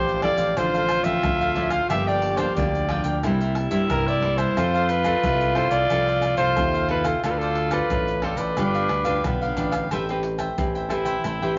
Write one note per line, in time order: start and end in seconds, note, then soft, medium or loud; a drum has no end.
0.00 0.33 A1 medium
0.00 0.54 A2 medium
0.00 0.17 F3 medium
0.00 0.17 C4 medium
0.00 0.21 D4 soft
0.00 0.17 E4 medium
0.00 0.50 G4 loud
0.00 0.21 A4 medium
0.00 0.19 C5 loud
0.00 0.22 C5 medium
0.00 0.22 F5 medium
0.08 pandeiro soft
0.08 maracas soft
0.22 0.52 F3 soft
0.22 0.52 C4 medium
0.22 0.38 D4 medium
0.22 0.52 E4 medium
0.22 0.38 A4 medium
0.22 0.37 C5 medium
0.22 0.59 D5 loud
0.22 0.36 F5 medium
0.22 pandeiro medium
0.22 tamborim medium
0.22 surdo soft
0.37 0.53 A1 medium
0.37 0.55 A4 soft
0.37 0.55 C5 medium
0.37 0.54 F5 medium
0.37 pandeiro medium
0.37 maracas medium
0.50 0.58 G4 medium
0.56 1.00 A1 medium
0.56 1.21 D3 medium
0.56 1.02 F3 medium
0.56 1.02 C4 medium
0.56 0.72 D4 soft
0.56 1.91 F4 loud
0.56 0.73 A4 soft
0.56 1.06 C5 loud
0.56 0.73 C5 medium
0.56 0.73 F5 soft
0.56 pandeiro medium
0.56 tamborim medium
0.56 maracas medium
0.56 surdo soft
0.74 0.88 A4 soft
0.74 0.88 C5 medium
0.74 0.89 F5 medium
0.74 pandeiro soft
0.74 maracas soft
0.89 muted cavaquinho stroke soft
0.89 pandeiro medium
0.89 tamborim medium
0.89 maracas medium
1.04 1.20 A1 medium
1.04 1.51 F3 medium
1.04 1.51 C4 medium
1.04 1.38 A4 soft
1.04 1.38 C5 medium
1.04 1.72 E5 loud
1.04 pandeiro medium
1.04 maracas medium
1.04 surdo soft
1.23 1.80 D2 medium
1.23 1.87 A2 medium
1.23 pandeiro medium
1.23 tamborim medium
1.23 maracas medium
1.23 surdo loud
1.41 1.55 A4 soft
1.41 1.55 C5 medium
1.41 1.55 F5 medium
1.41 pandeiro soft
1.41 maracas soft
1.55 1.76 F3 medium
1.55 1.76 C4 medium
1.55 1.71 D4 soft
1.55 1.76 E4 medium
1.55 1.71 A4 medium
1.55 1.70 C5 medium
1.55 1.69 F5 medium
1.55 pandeiro medium
1.70 1.88 A4 medium
1.70 1.88 C5 medium
1.70 1.87 F5 medium
1.70 1.89 F5 medium
1.70 pandeiro medium
1.70 tamborim medium
1.70 maracas medium
1.70 surdo soft
1.90 2.47 G1 medium
1.90 2.54 G2 soft
1.90 2.35 F3 medium
1.90 2.35 A#3 medium
1.90 2.36 D4 medium
1.90 2.06 F4 soft
1.90 2.96 G4 loud
1.90 2.06 A#4 soft
1.90 2.06 D5 medium
1.90 2.09 E5 loud
1.90 2.06 G5 soft
1.90 pandeiro medium
1.90 tamborim medium
1.90 maracas medium
1.90 surdo medium
2.07 2.21 A#4 medium
2.07 2.38 D5 medium
2.07 2.22 D5 medium
2.07 2.22 G5 medium
2.07 pandeiro soft
2.07 maracas soft
2.22 pandeiro medium
2.37 2.83 F3 medium
2.37 2.84 A#3 medium
2.37 2.84 D4 medium
2.37 2.55 A#4 medium
2.37 2.55 C5 medium
2.37 2.55 D5 medium
2.37 2.54 G5 medium
2.37 pandeiro medium
2.37 tamborim medium
2.37 maracas medium
2.37 surdo soft
2.56 2.99 D2 medium
2.56 3.20 D3 medium
2.56 2.87 F4 soft
2.56 2.88 A#4 medium
2.56 3.19 D5 medium
2.56 2.89 D5 medium
2.56 2.89 G5 medium
2.56 pandeiro medium
2.56 maracas medium
2.56 surdo loud
2.75 pandeiro soft
2.75 maracas soft
2.89 3.18 F3 medium
2.89 3.18 A#3 soft
2.89 3.18 D4 medium
2.89 3.05 F4 medium
2.89 3.04 A#4 medium
2.89 3.04 D5 medium
2.89 3.03 G5 medium
2.89 pandeiro medium
2.89 tamborim medium
2.89 surdo soft
3.04 3.25 D2 medium
3.04 3.22 A#4 medium
3.04 3.21 D5 medium
3.04 3.21 G5 medium
3.04 pandeiro medium
3.04 maracas medium
3.23 3.66 C2 medium
3.23 3.87 C3 medium
3.23 3.69 G3 medium
3.23 3.69 A#3 medium
3.23 4.58 E4 loud
3.23 3.39 E4 medium
3.23 3.69 E4 medium
3.23 3.39 A#4 medium
3.23 3.40 C5 medium
3.23 3.40 E5 soft
3.23 pandeiro medium
3.23 tamborim medium
3.23 maracas medium
3.23 surdo soft
3.41 3.55 A#4 soft
3.41 3.55 C5 medium
3.41 3.56 E5 medium
3.41 pandeiro soft
3.41 maracas soft
3.55 muted cavaquinho stroke soft
3.55 pandeiro medium
3.55 tamborim medium
3.71 3.86 G2 medium
3.71 4.17 G3 medium
3.71 4.17 A#3 medium
3.71 4.17 E4 medium
3.71 4.05 A#4 medium
3.71 4.05 C5 medium
3.71 4.04 E5 medium
3.71 pandeiro medium
3.71 maracas medium
3.71 surdo soft
3.90 4.47 C2 medium
3.90 4.54 G2 medium
3.90 4.09 A#4 medium
3.90 pandeiro medium
3.90 tamborim medium
3.90 maracas medium
3.90 surdo loud
4.08 4.21 A#4 soft
4.08 4.22 C5 medium
4.08 4.39 D5 medium
4.08 4.23 E5 medium
4.08 pandeiro soft
4.08 maracas soft
4.22 4.51 G3 medium
4.22 4.51 A#3 medium
4.22 4.38 E4 soft
4.22 4.52 E4 medium
4.22 4.38 A#4 medium
4.22 4.37 C5 medium
4.22 4.36 E5 medium
4.22 pandeiro medium
4.38 4.55 A#4 medium
4.38 4.91 C5 loud
4.38 4.55 C5 medium
4.38 4.54 E5 medium
4.38 pandeiro medium
4.38 tamborim medium
4.38 maracas medium
4.38 surdo soft
4.57 5.14 F2 medium
4.57 5.21 F3 medium
4.57 4.88 C4 medium
4.57 4.72 E4 soft
4.57 7.23 F4 loud
4.57 4.73 A4 soft
4.57 4.89 A4 medium
4.57 4.73 C5 soft
4.57 4.73 F5 medium
4.57 pandeiro medium
4.57 tamborim medium
4.57 maracas medium
4.57 surdo medium
4.74 4.88 A4 medium
4.74 4.88 C5 medium
4.74 4.89 F5 medium
4.74 pandeiro soft
4.74 maracas soft
4.89 5.57 B4 loud
4.89 muted cavaquinho stroke soft
4.89 pandeiro medium
4.89 maracas medium
5.04 5.51 C4 medium
5.04 5.51 A4 medium
5.04 5.22 A4 medium
5.04 5.22 C5 medium
5.04 5.21 F5 medium
5.04 pandeiro medium
5.04 tamborim medium
5.04 maracas medium
5.04 surdo soft
5.23 5.66 C2 medium
5.23 5.88 C3 medium
5.23 5.55 A4 soft
5.23 5.56 F5 medium
5.23 pandeiro medium
5.23 maracas medium
5.23 surdo loud
5.41 pandeiro soft
5.41 maracas soft
5.55 5.85 C4 medium
5.55 5.71 E4 medium
5.55 5.85 E4 medium
5.55 5.71 A4 medium
5.55 5.85 A4 medium
5.55 5.71 C5 medium
5.55 5.70 C5 medium
5.55 5.69 F5 medium
5.55 pandeiro medium
5.55 tamborim medium
5.55 surdo soft
5.71 5.87 C2 medium
5.71 5.88 A4 medium
5.71 5.88 C5 medium
5.71 6.35 D5 loud
5.71 5.88 F5 medium
5.71 pandeiro medium
5.71 maracas medium
5.90 6.33 C2 medium
5.90 6.54 F3 medium
5.90 6.22 C4 medium
5.90 6.06 E4 medium
5.90 6.06 A4 medium
5.90 6.22 A4 medium
5.90 6.06 C5 medium
5.90 6.06 F5 medium
5.90 pandeiro medium
5.90 tamborim medium
5.90 maracas medium
5.90 surdo medium
6.07 6.21 A4 medium
6.07 6.21 C5 medium
6.07 6.21 F5 medium
6.07 pandeiro soft
6.07 maracas soft
6.22 muted cavaquinho stroke soft
6.22 pandeiro medium
6.22 tamborim medium
6.22 maracas medium
6.22 surdo soft
6.37 6.53 C2 medium
6.37 6.84 C4 medium
6.37 6.72 A4 medium
6.37 6.85 A4 medium
6.37 6.86 C5 medium
6.37 6.71 C5 medium
6.37 6.71 F5 medium
6.37 pandeiro medium
6.37 maracas medium
6.37 surdo soft
6.56 7.14 D#2 medium
6.56 7.21 C3 medium
6.56 pandeiro medium
6.56 tamborim medium
6.56 maracas medium
6.56 surdo loud
6.74 6.88 A4 soft
6.74 6.89 C5 medium
6.74 6.89 F5 medium
6.74 pandeiro soft
6.74 maracas soft
6.88 7.18 C4 medium
6.88 7.05 E4 soft
6.88 7.18 E4 medium
6.88 7.04 A4 soft
6.88 7.19 A4 medium
6.88 7.06 B4 medium
6.88 7.04 C5 soft
6.88 7.03 F5 medium
6.88 pandeiro medium
7.04 7.22 A4 medium
7.04 7.21 C5 medium
7.04 7.21 F5 medium
7.04 pandeiro medium
7.04 tamborim medium
7.04 maracas medium
7.04 surdo soft
7.24 7.81 D2 medium
7.24 7.87 D3 medium
7.24 7.55 C4 medium
7.24 7.39 F4 soft
7.24 8.26 F4 medium
7.24 7.56 F4 medium
7.24 7.39 A4 soft
7.24 7.56 A4 medium
7.24 7.32 A4 medium
7.24 7.40 C5 soft
7.24 7.40 D5 soft
7.24 pandeiro medium
7.24 tamborim medium
7.24 maracas medium
7.24 surdo medium
7.30 7.40 B4 medium
7.39 7.74 A4 medium
7.39 7.56 C5 medium
7.39 7.56 D5 medium
7.39 pandeiro soft
7.39 maracas soft
7.43 7.56 A4 soft
7.55 muted cavaquinho stroke soft
7.55 pandeiro medium
7.71 8.18 C4 medium
7.71 8.18 F4 medium
7.71 8.18 A4 medium
7.71 7.89 A4 medium
7.71 8.25 B4 medium
7.71 7.89 C5 medium
7.71 7.88 D5 medium
7.71 pandeiro medium
7.71 tamborim medium
7.71 maracas medium
7.71 surdo soft
7.90 8.33 A1 medium
7.90 8.55 A2 medium
7.90 8.22 F4 soft
7.90 8.22 A4 soft
7.90 8.23 D5 medium
7.90 pandeiro medium
7.90 maracas medium
7.90 surdo loud
8.08 pandeiro soft
8.08 maracas soft
8.22 8.52 C4 medium
8.22 8.39 F4 medium
8.22 8.52 F4 medium
8.22 8.39 A4 medium
8.22 8.52 A4 medium
8.22 8.38 C5 medium
8.22 8.37 D5 medium
8.22 pandeiro medium
8.22 tamborim medium
8.22 surdo soft
8.37 8.59 A1 medium
8.37 8.56 A4 medium
8.37 9.39 B4 medium
8.37 8.56 C5 medium
8.37 8.55 D5 medium
8.37 pandeiro medium
8.37 maracas medium
8.57 8.86 G1 medium
8.57 9.21 G3 medium
8.57 9.20 D4 medium
8.57 8.89 D4 medium
8.57 8.73 D4 soft
8.57 8.89 F4 medium
8.57 8.73 G4 medium
8.57 8.74 B4 soft
8.57 8.90 B4 medium
8.57 8.74 F5 medium
8.57 pandeiro medium
8.57 tamborim medium
8.57 maracas medium
8.57 surdo medium
8.74 8.89 G4 soft
8.74 8.89 B4 soft
8.74 8.89 F5 medium
8.74 pandeiro soft
8.74 maracas soft
8.89 9.20 D2 medium
8.89 muted cavaquinho stroke soft
8.89 pandeiro medium
8.89 tamborim medium
9.04 9.51 D4 medium
9.04 9.52 F4 medium
9.04 9.39 G4 medium
9.04 9.39 B4 medium
9.04 9.52 B4 medium
9.04 9.38 F5 medium
9.04 pandeiro medium
9.04 maracas medium
9.04 surdo soft
9.24 9.55 B1 medium
9.24 9.88 D3 medium
9.24 9.87 B3 medium
9.24 pandeiro medium
9.24 tamborim medium
9.24 maracas medium
9.24 surdo loud
9.41 9.56 G4 soft
9.41 9.56 B4 medium
9.41 9.57 F5 medium
9.41 pandeiro soft
9.41 maracas soft
9.56 9.87 A1 medium
9.56 9.72 D4 soft
9.56 9.86 D4 medium
9.56 9.86 F4 medium
9.56 9.72 G4 soft
9.56 9.71 B4 soft
9.56 9.86 B4 medium
9.56 9.70 F5 medium
9.56 pandeiro medium
9.56 maracas medium
9.71 9.89 G4 medium
9.71 9.89 B4 medium
9.71 9.88 F5 medium
9.71 pandeiro medium
9.71 tamborim medium
9.71 maracas medium
9.71 surdo soft
9.91 10.48 A1 medium
9.91 10.55 A3 medium
9.91 10.03 C4 medium
9.91 10.03 G4 medium
9.91 10.07 A4 medium
9.91 10.03 B4 medium
9.91 10.07 C5 medium
9.91 10.07 E5 medium
9.91 10.07 G5 medium
9.91 pandeiro medium
9.91 tamborim medium
9.91 maracas medium
9.91 surdo medium
10.09 10.54 C4 medium
10.09 10.54 G4 medium
10.09 10.54 B4 medium
10.09 10.22 C5 soft
10.09 10.23 E5 soft
10.09 10.23 G5 soft
10.09 pandeiro soft
10.09 maracas soft
10.23 muted cavaquinho stroke soft
10.23 pandeiro medium
10.38 10.73 C5 soft
10.38 10.72 E5 medium
10.38 10.72 G5 medium
10.38 pandeiro soft
10.38 tamborim medium
10.38 maracas medium
10.38 surdo soft
10.58 11.15 A1 medium
10.58 11.22 E3 medium
10.58 10.86 C4 medium
10.58 10.87 G4 medium
10.58 10.87 B4 medium
10.58 pandeiro medium
10.58 maracas medium
10.58 surdo loud
10.75 10.88 C5 soft
10.75 10.89 E5 soft
10.75 10.89 G5 soft
10.75 pandeiro soft
10.75 maracas soft
10.89 11.36 C4 medium
10.89 11.54 E4 medium
10.89 11.36 G4 soft
10.89 11.06 A4 soft
10.89 11.36 B4 medium
10.89 11.05 C5 soft
10.89 11.04 E5 soft
10.89 11.04 G5 soft
10.89 pandeiro medium
10.89 tamborim medium
10.89 maracas medium
10.89 surdo soft
11.05 11.23 C5 soft
11.05 11.22 E5 medium
11.05 11.22 G5 medium
11.05 pandeiro medium
11.05 maracas medium
11.24 11.39 A1 medium
11.24 11.58 A3 medium
11.24 11.40 A4 soft
11.24 11.41 C5 medium
11.24 11.41 E5 medium
11.24 11.41 G5 medium
11.24 pandeiro medium
11.24 tamborim medium
11.24 maracas medium
11.24 surdo soft
11.42 11.58 A1 medium
11.42 11.58 C4 medium
11.42 11.58 G4 medium
11.42 11.58 B4 medium
11.42 11.56 C5 soft
11.42 11.56 E5 medium
11.42 11.56 G5 medium
11.42 pandeiro soft
11.42 maracas soft